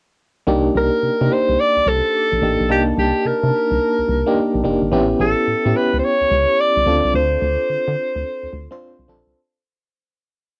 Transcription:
0.47 C2 A#3 D4 D#4 G4
0.75 C2 A#3 D4 D#4 G4 A#4
1.03 C3
1.21 C3 A#3 D4 D#4 G4
1.31 A#3 D4 D#4 G4 C5
1.49 C2
1.60 D5
1.77 C2
1.86 C2 A4
2.32 A#1
2.42 A1 A#3 D4 D#4 G4
2.60 A#1
2.69 C2 A#3 D4 D#4 G4 A5
2.97 C2 G4
3.25 C3 A#4
3.43 C3
3.71 C2
3.99 C2
4.08 C2
4.26 A#3 D4 D#4 G4
4.54 A#1
4.64 F1 A#3 D4 D#4 G4
4.82 G1
4.92 A1 B3 C#4 E4 G4
5.19 A1 B3 C#4 E4 G4 A4
5.47 A2
5.65 A2 B3 C#4 E4 G4
5.75 B3 C#4 E4 G4 B4
5.93 C#2
5.99 C5
6.04 C#5
6.21 C#2
6.31 C#2
6.60 D5
6.77 C2
6.86 D2 C4 D4 F4 A4
7.05 C2
7.14 D2 C5
7.42 D2
7.70 D3
7.88 D3
8.16 D2
8.43 D2
8.53 D2
8.71 C4 D4 F4 C5
8.99 C2
9.08 A#1 C4 D4 F4 A4
9.27 C2

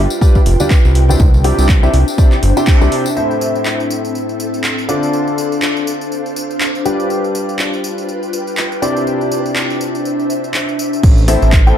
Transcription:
Already playing: F4 B4 G5
0.10 tambourine
0.21 G3 D4 F4 G4 B4 D5, kick, tambourine
0.35 kick, tambourine
0.46 F1, open hi-hat
0.60 G3 D4 F4 G4 B4 D5, tambourine, high conga
0.70 kick, clap, tambourine
0.85 C2, tambourine
0.95 D4, open hi-hat
1.09 C3 D4 E4 G4 C5 D5, tambourine, high conga
1.20 C2 C5, kick, tambourine, high conga
1.34 tambourine, high conga
1.44 C3 D4 E4 G4 C5 D5, open hi-hat
1.58 C2, tambourine
1.69 kick, clap, tambourine
1.83 C3 D4 E4 G4 C5 E5, tambourine
1.94 C2 E5, open hi-hat
2.08 tambourine
2.18 C3 D4 E4 G4 C5 D5, kick, tambourine
2.32 clap, tambourine
2.43 G1, open hi-hat
2.57 C3 D4 E4 G4 C5 G5, tambourine
2.66 kick, clap, tambourine
2.81 C2 C3 D4 E4 G4 C5 D5, tambourine
2.92 open hi-hat
3.06 tambourine
3.17 A2 C4 E4 A4 C5 E5, tambourine
3.31 tambourine
3.40 A4, tambourine
3.55 tambourine
3.65 clap, tambourine
3.80 tambourine
3.91 tambourine
4.05 tambourine
4.15 tambourine
4.29 tambourine
4.40 tambourine
4.54 tambourine
4.64 clap, tambourine
4.78 tambourine
4.89 D3 D4 F4 A4 C5 D5, tambourine
5.03 tambourine
5.13 tambourine
5.28 tambourine
5.34 C5
5.38 tambourine
5.52 tambourine
5.62 F5, clap, tambourine
5.77 tambourine
5.87 tambourine
6.01 tambourine
6.12 tambourine
6.26 tambourine
6.36 tambourine
6.51 tambourine
6.61 clap, tambourine
6.75 tambourine
6.85 G3 D4 F4 G4 B4 D5, tambourine
7.00 tambourine
7.10 tambourine
7.23 B4, tambourine
7.35 tambourine
7.49 tambourine
7.57 G5, clap, tambourine
7.73 tambourine
7.84 tambourine
7.98 tambourine
8.09 tambourine
8.23 tambourine
8.33 tambourine
8.47 tambourine
8.57 clap, tambourine
8.72 tambourine
8.82 C3 D4 E4 G4 C5 D5, tambourine
8.96 tambourine
9.07 tambourine
9.12 E5
9.21 C5, tambourine
9.32 tambourine
9.46 tambourine
9.56 clap, tambourine
9.70 tambourine
9.81 tambourine
9.95 tambourine
10.05 tambourine
10.19 tambourine
10.30 tambourine
10.44 tambourine
10.54 clap, tambourine
10.69 tambourine
10.79 tambourine
10.93 tambourine
11.03 A1 C4, kick, tambourine, crash
11.18 tambourine
11.28 A2 C4 E4 A4 C5 E5, cross-stick, open hi-hat, tambourine
11.42 A1, tambourine
11.52 kick, clap, tambourine
11.60 A4
11.67 A2 C4 E4 A4 C5 G5, tambourine

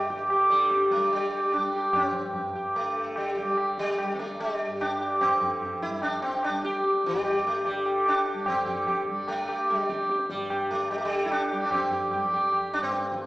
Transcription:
Already playing: G2 D3 G3
0.10 G4, tabla ke
0.30 D3 G4, tabla na
0.50 G3, tabla ke
0.70 G4, tabla te
0.81 tabla te
0.91 G3 A3, tabla ke
1.01 tabla te
1.11 G3, tabla na
1.33 G4, tabla na
1.52 D4, tabla na
1.56 G3
1.73 G4, tabla na
1.93 C4, tabla na, tabla ge
2.13 tabla ge
2.18 G2
2.33 tabla na, tabla ge
2.55 G4, tabla ge
2.75 A3, tabla na
2.80 D3
2.96 tabla na
3.16 G3, tabla na
3.36 G4, tabla ke
3.43 G3
3.58 tabla na
3.78 G3, tabla ke
3.98 tabla na
4.03 G3
4.14 C4
4.19 A3, tabla ke
4.40 G3, tabla na
4.60 tabla na
4.66 G2
4.81 D4, tabla na
5.00 G4, tabla na
5.21 C4, tabla na, tabla ge
5.26 D3
5.42 tabla ge
5.62 tabla na, tabla ge
5.82 E4, tabla te
5.88 G3, tabla ge
6.02 D4, tabla na
6.22 C4, tabla na
6.43 D4, tabla na
6.49 G3
6.63 G4, tabla ke
6.83 tabla te
6.94 tabla te
7.04 G3, tabla ke
7.11 G2, tabla te
7.25 G4, tabla na
7.45 A3 G4, tabla ke
7.65 G3 G4, tabla na
7.71 D3
7.85 G4, tabla na
8.06 D4 G4, tabla na
8.26 G4, tabla na
8.33 G3
8.46 D3 C4, tabla na, tabla ge
8.67 G4, tabla ge
8.87 G4, tabla na, tabla ge
9.07 G3, tabla ge
9.28 A3, tabla na
9.48 G4, tabla na
9.69 G3, tabla na
9.90 G4, tabla ke
10.09 G4, tabla te
10.19 tabla te
10.30 G2 G3, tabla ke
10.41 tabla te
10.50 G4, tabla na
10.71 A3, tabla ke
10.91 D3 G3, tabla na
10.98 A3
11.05 G3
11.11 tabla na
11.25 E4
11.31 D4, tabla na
11.52 G3 G4, tabla na
11.65 D4
11.71 C4, tabla na, tabla ge
11.91 G4, tabla ge
12.11 G3 G4, tabla na, tabla ge
12.32 G4, tabla te
12.42 tabla ge
12.53 G4, tabla na
12.72 G2 D4, tabla na
12.83 C4
12.91 tabla te
13.02 tabla te
13.12 tabla ke
13.22 tabla te

